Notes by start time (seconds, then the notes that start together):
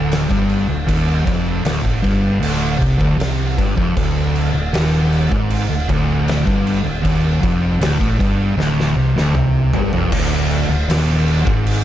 Already playing: D1 D2
0.12 snare, crash
0.29 G1 G2, kick
0.49 crash
0.68 D1 D2
0.87 D#1 D#2, kick, crash
1.25 F1 F2, kick, crash
1.64 D1 D2, snare, crash
1.83 A1 A2, kick
2.02 G1 G2, kick, crash
2.40 D1 D2, crash
2.79 C2 C3, kick, crash
2.98 D1 D2, kick
3.18 C2 C3, snare, crash
3.58 G1 G2, kick, crash
3.77 F1 F2, kick
3.97 D1 D2, kick, crash
4.35 crash
4.54 D1 D2
4.72 D#1 D#2, snare, crash
5.13 crash
5.31 G#1 G#2, kick
5.50 crash
5.69 D1 D2
5.89 D1 D2, kick, crash
6.28 snare, crash
6.46 G1 G2, kick
6.67 crash
6.84 D1 D2
7.03 D#1 D#2, kick, crash
7.42 F1 F2, kick, crash
7.80 D1 D2, snare, crash
7.99 A1 A2, kick
8.19 G1 G2, kick, crash
8.57 D1 D2, snare
8.80 snare
8.96 C2 C3
9.14 D1 D2, snare
9.32 C2 C3, mid tom
9.72 G1 G2, floor tom
9.92 F1 F2, floor tom
10.12 D1 D2, kick, crash
10.51 crash
10.68 D1 D2
10.87 D#1 D#2, snare, crash
11.28 crash
11.45 G#1 G#2, kick
11.66 crash